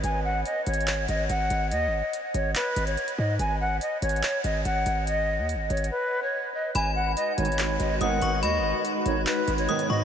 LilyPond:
<<
  \new Staff \with { instrumentName = "Synth bell" } { \time 4/4 \key gis \minor \tempo 4 = 143 r1 | r1 | r1 | r1 |
b''2. dis'''8 cis'''8 | b''2. dis'''8 cis'''8 | }
  \new Staff \with { instrumentName = "Flute" } { \time 4/4 \key gis \minor gis''8 fis''8 dis''8 cis''4 dis''8 fis''4 | dis''4 r8 cis''8 b'8. cis''8. dis''8 | gis''8 fis''8 dis''8 cis''4 dis''8 fis''4 | dis''4 r8 cis''8 b'8. cis''8. dis''8 |
gis''8 fis''8 dis''8 cis''4 dis''8 fis''4 | dis''4 r8 cis''8 b'8. cis''8. dis''8 | }
  \new Staff \with { instrumentName = "Ambient pad" } { \time 4/4 \key gis \minor r1 | r1 | r1 | r1 |
<gis dis' fis' b'>1~ | <gis dis' fis' b'>1 | }
  \new Staff \with { instrumentName = "Brass ensemble" } { \clef bass \time 4/4 \key gis \minor r1 | r1 | r1 | r1 |
r4. <gis, b, dis>16 r4 r16 <gis, b, dis>8. r16 | r4. <gis, b, dis>16 r4 r16 <gis, b, dis>8. r16 | }
  \new Staff \with { instrumentName = "808-style bass" } { \clef bass \time 4/4 \key gis \minor gis,,4 r8 gis,,4 gis,,8 gis,,8 gis,,8 | dis,16. gis,,16. r8. gis,,8 r8 gis,,8 r8 gis,8 | gis,,4 r8 gis,,8 r8 gis,,8 gis,,8 gis,,8~ | gis,,8. dis,16. gis,,16. gis,,8 r2 |
gis,,4 r8 gis,,4 gis,,8 gis,,8 gis,,8 | dis,16. gis,,16. r8. gis,,8 r8 gis,,8 r8 gis,8 | }
  \new DrumStaff \with { instrumentName = "Drums" } \drummode { \time 4/4 hh4 \tuplet 3/2 { hh16 r16 r16 hh16 hh16 hh16 } <hc hh>8 hh8 hh8 hh8 | hh4 hh8 hh8 <hc hh>8 hh16 hh16 hh16 hh8. | hh4 \tuplet 3/2 { hh16 r16 r16 hh16 hh16 hh16 } <hc hh>8 hh8 hh8 hh8 | hh4 \tuplet 3/2 { hh16 r16 r16 hh16 hh16 hh16 } r4 r4 |
hh4 \tuplet 3/2 { hh16 r16 r16 hh16 hh16 hh16 } <hc hh>8 hh8 hh8 hh8 | hh4 hh8 hh8 <hc hh>8 hh16 hh16 hh16 hh8. | }
>>